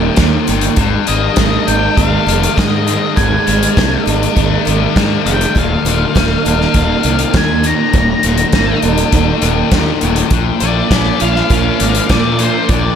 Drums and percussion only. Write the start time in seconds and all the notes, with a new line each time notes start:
0.17 kick, snare, closed hi-hat
0.48 closed hi-hat
0.61 closed hi-hat
0.76 kick, closed hi-hat
1.07 closed hi-hat
1.36 kick, snare, closed hi-hat
1.68 closed hi-hat
1.98 kick, closed hi-hat
2.29 closed hi-hat
2.43 closed hi-hat
2.58 kick, snare, closed hi-hat
2.88 closed hi-hat
3.17 kick, closed hi-hat
3.48 closed hi-hat
3.63 closed hi-hat
3.77 kick, snare, closed hi-hat
4.07 closed hi-hat
4.23 closed hi-hat
4.37 kick, closed hi-hat
4.67 closed hi-hat
4.96 kick, snare, closed hi-hat
5.27 closed hi-hat
5.41 closed hi-hat
5.56 kick, closed hi-hat
5.86 closed hi-hat
6.16 kick, snare, closed hi-hat
6.46 closed hi-hat
6.61 snare
6.74 kick, closed hi-hat
7.03 closed hi-hat
7.19 closed hi-hat
7.34 kick, snare, closed hi-hat
7.64 closed hi-hat
7.93 kick, closed hi-hat
8.23 closed hi-hat
8.38 closed hi-hat
8.52 kick, snare, closed hi-hat
8.82 closed hi-hat
8.98 closed hi-hat
9.12 kick, closed hi-hat
9.42 closed hi-hat
9.71 kick, snare, closed hi-hat
10.01 closed hi-hat
10.16 closed hi-hat
10.30 kick, closed hi-hat
10.60 closed hi-hat
10.91 kick, snare, closed hi-hat
11.20 closed hi-hat
11.36 snare
11.50 kick, closed hi-hat
11.80 closed hi-hat
11.95 closed hi-hat
12.09 kick, snare, closed hi-hat
12.39 closed hi-hat
12.69 kick, closed hi-hat